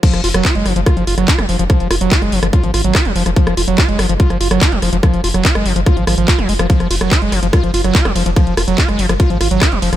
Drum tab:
CC |x---------------|----------------|----------------|----------------|
RD |----------------|----------------|----------------|----------------|
HH |xxoxxxoxxxoxxxox|xxoxxxoxxxoxxxox|xxoxxxoxxxoxxxox|xxoxxxoxxxoxxxox|
CP |----x-------x---|----x-------x---|----x-------x---|----x-------x---|
SD |-r-r--r-r--r-r--|r-r--r-r--r-r--r|-r--r-r--r-r--r-|r--r-r--r-r--r-r|
BD |o---o---o---o---|o---o---o---o---|o---o---o---o---|o---o---o---o---|

CC |----------------|----------------|
RD |x-x-x-x-x-x-x-x-|x-x-x-x-x-x-x-x-|
HH |xxoxxxoxxxoxxxox|xxoxxxoxxxoxxxox|
CP |----x-------x---|----x-------x---|
SD |-r-r--r-r--r-r--|r-r--r-r--r-r--r|
BD |o---o---o---o---|o---o---o---o---|